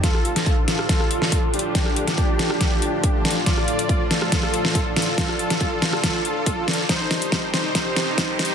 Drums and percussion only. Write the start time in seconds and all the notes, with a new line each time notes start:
0.04 kick, snare, closed hi-hat
0.15 cross-stick
0.25 closed hi-hat
0.36 cross-stick, snare, closed hi-hat
0.46 kick, closed hi-hat
0.68 snare, closed hi-hat
0.79 cross-stick
0.89 kick, snare, closed hi-hat
1.00 cross-stick
1.11 closed hi-hat
1.22 snare
1.32 kick, closed hi-hat
1.54 closed hi-hat
1.59 closed hi-hat
1.75 kick, snare, closed hi-hat
1.86 cross-stick
1.96 closed hi-hat
2.08 cross-stick, snare, closed hi-hat
2.18 kick, closed hi-hat
2.39 snare, closed hi-hat
2.50 cross-stick
2.61 kick, snare, closed hi-hat
2.82 closed hi-hat
3.04 kick, closed hi-hat
3.25 snare, closed hi-hat
3.31 closed hi-hat
3.46 kick, snare, closed hi-hat
3.58 cross-stick
3.68 closed hi-hat
3.79 closed hi-hat
3.89 kick, closed hi-hat
4.11 snare, closed hi-hat
4.22 cross-stick
4.32 kick, snare, closed hi-hat
4.43 cross-stick
4.54 closed hi-hat
4.65 snare
4.75 kick, closed hi-hat
4.96 snare, closed hi-hat
5.02 closed hi-hat
5.18 kick, snare, closed hi-hat
5.29 cross-stick
5.39 closed hi-hat
5.50 cross-stick, snare, closed hi-hat
5.61 kick, closed hi-hat
5.82 snare, closed hi-hat
5.93 cross-stick
6.04 kick, snare, closed hi-hat
6.25 closed hi-hat
6.46 kick, closed hi-hat
6.68 snare, closed hi-hat
6.73 closed hi-hat
6.89 kick, snare, closed hi-hat
7.11 snare, closed hi-hat
7.22 closed hi-hat
7.32 kick, snare, closed hi-hat
7.54 snare, open hi-hat
7.75 kick, snare, closed hi-hat
7.96 snare, closed hi-hat
8.18 kick, snare, closed hi-hat
8.39 snare, open hi-hat
8.45 closed hi-hat